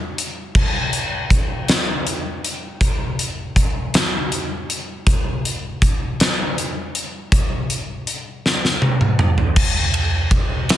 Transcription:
0.18 closed hi-hat medium
0.55 kick medium
0.55 crash medium
0.93 closed hi-hat soft
1.30 kick medium
1.30 closed hi-hat medium
1.68 snare loud
1.68 closed hi-hat medium
2.07 closed hi-hat soft
2.45 closed hi-hat medium
2.81 kick medium
2.81 closed hi-hat medium
3.19 closed hi-hat medium
3.56 kick medium
3.56 closed hi-hat medium
3.94 snare loud
3.94 closed hi-hat medium
4.32 closed hi-hat medium
4.70 closed hi-hat medium
5.07 kick medium
5.07 closed hi-hat medium
5.45 closed hi-hat medium
5.82 kick medium
5.82 closed hi-hat medium
6.20 snare medium
6.20 closed hi-hat medium
6.58 closed hi-hat soft
6.95 closed hi-hat medium
7.32 kick medium
7.32 closed hi-hat medium
7.70 closed hi-hat soft
8.07 closed hi-hat soft
8.46 snare soft
8.65 snare soft
8.82 high tom medium
9.01 mid tom medium
9.19 mid tom medium
9.38 floor tom medium
9.56 kick loud
9.56 crash loud
9.94 ride medium
10.31 kick medium
10.31 ride medium
10.69 snare loud
10.69 ride loud

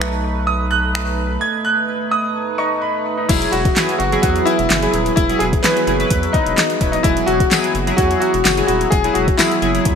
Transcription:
0.00 1.38 B1 medium
0.00 3.25 A3 medium
0.00 3.25 D#4 medium
0.00 3.26 B4 medium
0.00 0.50 C#6 medium
0.00 finger snap loud
0.47 0.69 D#6 medium
0.71 1.44 F#6 loud
0.95 finger snap loud
1.41 1.66 G#6 loud
1.65 2.09 F#6 loud
2.11 2.60 D#6 loud
2.58 3.16 D#4 medium
2.58 2.80 C#6 medium
2.82 3.15 B5 medium
3.17 3.28 D#4 medium
3.29 3.47 E1 loud
3.29 9.95 E3 medium
3.29 3.60 F#3 medium
3.29 9.95 B3 medium
3.29 3.53 E4 medium
3.29 3.60 E4 medium
3.29 9.95 F#4 medium
3.29 9.95 G#4 medium
3.29 3.60 G#4 medium
3.29 7.01 B4 medium
3.29 kick loud
3.29 closed hi-hat loud
3.29 crash loud
3.42 closed hi-hat medium
3.52 3.70 E1 loud
3.52 3.97 F#4 loud
3.52 closed hi-hat medium
3.65 kick loud
3.65 closed hi-hat medium
3.76 3.99 F#3 medium
3.76 3.99 E4 medium
3.76 3.99 G#4 medium
3.76 snare medium
3.76 clap loud
3.76 closed hi-hat medium
3.89 closed hi-hat soft
3.99 4.17 F#1 medium
3.99 4.21 F#4 loud
3.99 closed hi-hat medium
4.12 4.58 F#3 medium
4.12 4.58 E4 medium
4.12 4.58 G#4 loud
4.12 closed hi-hat medium
4.22 4.40 E2 loud
4.22 4.47 F#4 loud
4.22 kick loud
4.22 closed hi-hat loud
4.36 closed hi-hat soft
4.45 5.14 E4 loud
4.45 closed hi-hat medium
4.59 4.67 E1 medium
4.59 closed hi-hat soft
4.70 4.87 F#1 medium
4.70 snare medium
4.70 clap loud
4.70 closed hi-hat loud
4.82 5.12 F#3 medium
4.82 5.12 E4 medium
4.82 5.13 G#4 medium
4.82 closed hi-hat medium
4.94 5.11 D#1 loud
4.94 closed hi-hat medium
5.06 closed hi-hat medium
5.16 5.34 E1 loud
5.16 5.38 E4 loud
5.16 kick loud
5.16 closed hi-hat medium
5.29 5.52 F#3 medium
5.29 5.52 E4 medium
5.29 5.52 G#4 medium
5.29 closed hi-hat medium
5.39 5.58 E1 loud
5.39 5.45 G#4 loud
5.39 closed hi-hat medium
5.53 kick loud
5.53 closed hi-hat medium
5.63 5.79 F#3 medium
5.63 5.79 E4 medium
5.63 5.80 G#4 medium
5.63 6.36 B4 loud
5.63 snare medium
5.63 clap loud
5.63 closed hi-hat medium
5.77 closed hi-hat soft
5.87 6.04 F#1 medium
5.87 5.95 F#3 medium
5.87 5.95 E4 medium
5.87 5.95 G#4 medium
5.87 closed hi-hat medium
5.99 6.52 F#3 medium
5.99 6.53 E4 medium
5.99 6.53 B4 medium
5.99 closed hi-hat medium
6.10 6.28 E2 loud
6.10 kick loud
6.10 closed hi-hat loud
6.23 closed hi-hat soft
6.33 6.91 D#4 medium
6.33 kick loud
6.33 closed hi-hat medium
6.46 6.55 E1 medium
6.46 closed hi-hat medium
6.58 snare medium
6.58 clap loud
6.58 closed hi-hat loud
6.70 closed hi-hat medium
6.81 6.98 D#1 medium
6.81 6.97 F#3 medium
6.81 6.97 E4 medium
6.81 6.97 B4 medium
6.81 kick medium
6.81 closed hi-hat medium
6.92 7.03 D#4 medium
6.92 closed hi-hat medium
7.03 7.22 E1 loud
7.03 7.35 F#3 medium
7.03 7.26 E4 loud
7.03 7.35 E4 medium
7.03 7.35 G#4 medium
7.03 9.95 C#5 medium
7.03 kick loud
7.03 closed hi-hat medium
7.17 closed hi-hat medium
7.26 7.45 E1 loud
7.26 7.93 F#4 loud
7.26 closed hi-hat medium
7.40 kick loud
7.40 closed hi-hat medium
7.51 7.74 F#3 medium
7.51 7.74 E4 medium
7.51 7.74 G#4 medium
7.51 snare medium
7.51 clap loud
7.51 closed hi-hat medium
7.51 tambourine medium
7.64 closed hi-hat medium
7.75 7.92 F#1 loud
7.75 closed hi-hat medium
7.87 8.33 F#3 medium
7.87 8.33 E4 medium
7.87 8.33 G#4 loud
7.87 closed hi-hat medium
7.97 8.15 E2 loud
7.97 8.19 F#4 loud
7.97 kick loud
7.97 closed hi-hat loud
8.11 closed hi-hat soft
8.20 8.64 F#4 loud
8.20 closed hi-hat medium
8.34 8.42 E1 medium
8.34 closed hi-hat medium
8.45 8.62 F#1 medium
8.45 snare medium
8.45 clap loud
8.45 closed hi-hat loud
8.45 tambourine medium
8.57 8.87 F#3 medium
8.57 8.87 E4 medium
8.57 8.88 G#4 medium
8.57 closed hi-hat medium
8.67 8.86 D#1 medium
8.67 8.92 F#4 medium
8.67 closed hi-hat medium
8.81 closed hi-hat medium
8.90 9.09 E1 loud
8.90 9.15 G#4 loud
8.90 kick loud
8.90 closed hi-hat loud
9.04 9.27 F#3 medium
9.04 9.27 E4 medium
9.04 9.27 G#4 medium
9.04 closed hi-hat medium
9.14 9.33 E1 loud
9.14 9.39 F#4 medium
9.14 closed hi-hat medium
9.28 kick loud
9.28 closed hi-hat medium
9.38 9.54 F#3 medium
9.38 9.95 E4 medium
9.38 9.54 E4 medium
9.38 9.54 G#4 medium
9.38 snare medium
9.38 clap loud
9.38 closed hi-hat medium
9.38 tambourine medium
9.51 closed hi-hat medium
9.62 9.79 F#1 loud
9.62 9.70 F#3 medium
9.62 9.70 E4 medium
9.62 9.70 G#4 loud
9.62 closed hi-hat medium
9.74 9.95 F#3 medium
9.74 9.95 E4 medium
9.74 9.95 G#4 medium
9.74 closed hi-hat medium
9.85 9.95 E2 loud
9.85 kick loud
9.85 closed hi-hat loud

